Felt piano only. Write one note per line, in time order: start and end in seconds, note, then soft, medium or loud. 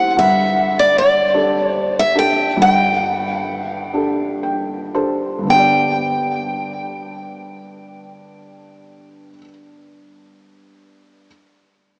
0.00 0.13 E1 medium
0.00 0.13 E2 medium
0.00 0.19 E4 medium
0.00 0.19 G4 medium
0.00 0.18 C5 medium
0.17 2.54 G1 medium
0.17 2.54 G2 medium
1.34 2.13 D4 medium
1.34 2.13 G4 medium
1.34 2.14 A4 medium
2.15 2.99 D4 medium
2.15 2.99 G4 medium
2.15 2.99 A4 medium
2.57 5.43 G1 medium
2.57 5.37 G2 medium
3.94 4.91 D4 medium
3.94 4.91 G4 soft
3.94 4.91 A4 medium
4.43 4.91 G5 medium
4.94 5.46 D4 soft
4.94 5.46 G4 soft
4.94 5.46 A4 medium
4.94 5.44 C5 medium
5.39 9.29 G2 medium
5.43 9.33 D3 medium
5.43 9.37 B3 soft
5.51 9.41 D4 medium
5.55 9.45 G4 soft
5.59 9.49 D5 medium